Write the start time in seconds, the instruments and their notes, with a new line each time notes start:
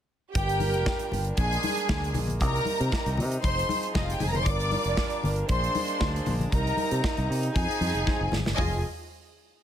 0.34 fingered electric bass G1, french horn section G3 D4 F4 A#4, string section G4 G5, kick, closed hi-hat, muted conga
0.49 closed hi-hat
0.60 open hi-hat, high conga
0.74 fingered electric bass F1, closed hi-hat
0.86 kick, snare, muted conga
0.99 closed hi-hat
1.12 fingered electric bass G1, open hi-hat, muted conga, low conga
1.25 closed hi-hat
1.37 fingered electric bass A#1, french horn section G#3 A#3, string section G#4 G#5, kick, closed hi-hat
1.53 closed hi-hat
1.63 open hi-hat, muted conga, high conga
1.77 closed hi-hat
1.89 fingered electric bass D2, kick, snare, muted conga, high conga
2.04 closed hi-hat
2.14 fingered electric bass A#1, open hi-hat, muted conga, high conga, low conga
2.28 closed hi-hat, low conga
2.40 fingered electric bass C2, french horn section C3 G3 D#4, string section A#4 A#5, kick, closed hi-hat, muted conga
2.56 closed hi-hat
2.65 open hi-hat, high conga
2.80 fingered electric bass C3, closed hi-hat
2.92 kick, snare, muted conga
3.06 fingered electric bass C2, closed hi-hat
3.17 fingered electric bass C3, open hi-hat, low conga
3.32 closed hi-hat
3.42 fingered electric bass F1, french horn section F3 C4 G#4, string section C5 C6, kick, closed hi-hat, muted conga
3.59 closed hi-hat
3.69 open hi-hat, muted conga, high conga
3.83 closed hi-hat
3.95 fingered electric bass F1, string section D#4 D#5, kick, snare, high conga
4.03 string section F4 F5
4.10 string section G4 G5, closed hi-hat
4.20 fingered electric bass F1, string section G#4 G#5, open hi-hat, muted conga, high conga, low conga
4.28 string section A#4 A#5
4.34 string section C5 C6, closed hi-hat, low conga
4.45 fingered electric bass G1, french horn section G3 D4 F4 A#4, string section D5 D6, kick, closed hi-hat, muted conga
4.60 closed hi-hat
4.71 open hi-hat, muted conga, high conga
4.85 fingered electric bass F1, closed hi-hat
4.97 kick, snare
5.10 closed hi-hat
5.23 fingered electric bass G1, open hi-hat, low conga
5.36 closed hi-hat
5.49 fingered electric bass A#1, french horn section G#3 A#3 D4, string section C5 C6, kick, closed hi-hat, muted conga
5.64 closed hi-hat
5.75 open hi-hat, muted conga, high conga
5.88 closed hi-hat
6.01 fingered electric bass D2, kick, snare, muted conga, high conga
6.16 closed hi-hat
6.26 fingered electric bass A#1, open hi-hat, muted conga, high conga, low conga
6.40 closed hi-hat, low conga
6.51 fingered electric bass C2, french horn section C3 G3 A#3 D#4, string section A#4 A#5, kick, closed hi-hat
6.67 closed hi-hat
6.77 open hi-hat, muted conga, high conga
6.91 fingered electric bass C3, closed hi-hat
7.04 kick, snare
7.17 fingered electric bass C2, closed hi-hat
7.30 fingered electric bass C3, open hi-hat
7.43 closed hi-hat
7.54 fingered electric bass F2, french horn section F3 C4 G#4, string section G#4 G#5, kick, closed hi-hat
7.71 closed hi-hat
7.81 fingered electric bass F2, open hi-hat, muted conga, high conga
7.94 fingered electric bass F1, closed hi-hat
8.07 kick, snare, high conga
8.21 fingered electric bass F1
8.32 fingered electric bass G#1, snare, high conga, low conga
8.45 fingered electric bass G1, snare, low conga
8.57 fingered electric bass F1, french horn section F3 C4 D#4 G#4, string section F4 D#5 G#5, kick, floor tom, open hi-hat, high conga